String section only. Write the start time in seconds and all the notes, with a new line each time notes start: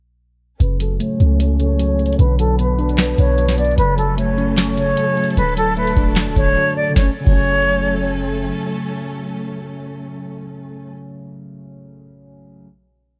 0.60 F#3 A3 C#4 A4
2.19 F#3 B3 D4 B4
3.78 A3 C#4 A4
5.37 A3 D4
6.96 F#3 A3 C#4 A4